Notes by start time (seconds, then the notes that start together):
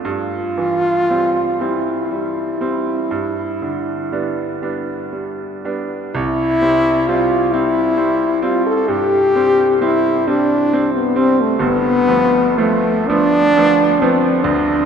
0.05 G2 F4
0.58 E3
1.10 G3 C4
1.60 G3 C4 E4
2.11 G3
2.61 G3 C4
3.11 G2
3.62 D3
4.12 G3 B3 D4
4.62 G3 B3 D4
5.13 G3
5.65 G3 B3 D4
6.15 C2 E4
6.61 G3 C4
7.07 G3 C4 F4
7.51 G3 C4 E4
7.97 G3 C4
8.42 G3 C4 F4
8.66 A4
8.88 G2 G4
9.35 G3 C4
9.81 G3 C4 E4
10.27 G3 C4 D4
10.73 G3 C4
10.95 B3
11.16 G3 C4
11.41 A3
11.59 G1 G2 B3
12.08 F3 A3 B3
12.58 F3 A3 B3
13.08 F3 A3 B3 D4
13.57 F3 A3 B3
14.00 F3 A3 B3 C4
14.44 D2 D4